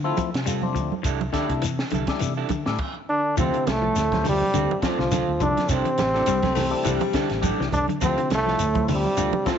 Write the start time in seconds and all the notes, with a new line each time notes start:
Already playing: D3
0.04 F3 A3 C4 E4 F4 A4
0.17 F3, muted clean electric guitar stroke, kick, closed hi-hat, high conga, shekere
0.34 C3, muted clean electric guitar stroke, snare, closed hi-hat
0.46 G3 C4 F4 A4, closed hi-hat, shekere
0.62 F3 A3 C4 D4, muted clean electric guitar stroke, high conga
0.75 D2 F3, muted clean electric guitar stroke, kick, closed hi-hat, shekere
0.92 muted fingered electric bass stroke, high conga
1.03 C2 G3 D4 E4 A4, muted clean electric guitar stroke, kick, closed hi-hat, shekere
1.21 muted clean electric guitar stroke, high conga
1.33 D3 G3 A3 D4 E4 A4, kick, snare, closed hi-hat, shekere
1.49 C3, kick, closed hi-hat
1.62 E3, closed hi-hat, shekere
1.79 muted clean electric guitar stroke, snare
1.90 C2 D3 G3 E4, closed hi-hat, high conga, shekere
1.95 A4
2.07 G3 A3 D4 E4, muted clean electric guitar stroke, kick, snare, closed hi-hat
2.19 C3 E3, muted clean electric guitar stroke, closed hi-hat, shekere
2.37 G3 D4 E4 A4
2.49 D3, kick, closed hi-hat, high conga, shekere
2.66 A2 G3 A3 D4 E4, muted clean electric guitar stroke, snare
2.78 kick, crash
3.09 D3 D4
3.37 D2 C3 F3 A3 C4 E4 F4 A4, kick, closed hi-hat, high conga, low conga, shekere
3.54 D3, closed hi-hat
3.66 C2 A2 A3, muted clean electric guitar stroke, snare, closed hi-hat, high conga, shekere
3.82 F3 A4, muted clean electric guitar stroke
3.96 D2, muted clean electric guitar stroke, snare, closed hi-hat, high conga, shekere
4.11 F3 A3 C4 G4, muted clean electric guitar stroke, kick, snare, closed hi-hat, high conga
4.24 D3, open hi-hat, low conga, shekere
4.29 C3 G3
4.41 muted clean electric guitar stroke, high conga
4.54 D2 D3 C4 A4, muted clean electric guitar stroke, closed hi-hat, high conga, low conga, shekere
4.71 muted clean electric guitar stroke, high conga
4.82 F3 A3 C4 D4 F4 A4, muted fingered electric bass stroke, kick, snare, closed hi-hat, shekere
4.87 F2 F3
4.99 C2 D3, muted clean electric guitar stroke, snare
5.12 D3 C4 F4 A4, kick, snare, closed hi-hat, high conga, shekere
5.28 D2
5.40 C2 D3 F3 A3 C4 D4 E4, muted clean electric guitar stroke, kick, closed hi-hat, low conga, shekere
5.57 muted clean electric guitar stroke, snare, closed hi-hat, high conga
5.69 C2 C3 G3 C4 D4 E4 A4, kick, closed hi-hat, high conga, low conga, shekere
5.85 E3, closed hi-hat
5.98 A1, muted clean electric guitar stroke, snare, closed hi-hat, high conga, shekere
6.13 G3 A3 D4 E4 A4, snare
6.26 C2 G3, closed hi-hat, shekere
6.42 A3, muted clean electric guitar stroke, kick, snare, closed hi-hat, high conga
6.55 E3 A3, snare, open hi-hat, low conga, shekere
6.70 G3 A3 D4 E4, muted clean electric guitar stroke
6.84 C2 E3 G3 D4 A4, muted clean electric guitar stroke, closed hi-hat, high conga, low conga, shekere
7.01 muted clean electric guitar stroke, closed hi-hat, high conga
7.13 D3 G3 D4 E4 A4, muted fingered electric bass stroke, kick, snare, closed hi-hat, shekere
7.30 A1, muted clean electric guitar stroke, snare, closed hi-hat
7.41 G3 A3 D4 E4 G4 A4, kick, closed hi-hat, high conga, shekere
7.60 C2 E3, snare
7.71 C2 D4, muted clean electric guitar stroke, kick, closed hi-hat, low conga, shekere
7.77 D3
7.88 D3, muted clean electric guitar stroke, closed hi-hat, high conga
8.01 D2 C3 F3 A3 C4 E4 F4 A4, kick, closed hi-hat, shekere
8.18 D3, closed hi-hat
8.30 C2, muted clean electric guitar stroke, snare, closed hi-hat, high conga, shekere
8.35 A2 A3
8.46 F3 F4 A4, snare
8.59 D2, muted clean electric guitar stroke, closed hi-hat, high conga, shekere
8.74 F3 A3 C4 E4, muted clean electric guitar stroke, kick, closed hi-hat, high conga
8.88 D3, open hi-hat, low conga, shekere
8.93 C3 G3
9.05 muted clean electric guitar stroke, high conga
9.17 D2 D3 C4 F4 A4, closed hi-hat, high conga, shekere
9.33 muted clean electric guitar stroke, high conga
9.44 F3 A3 C4 E4 F4 A4, muted fingered electric bass stroke, kick, snare, closed hi-hat, shekere
9.51 F2 F3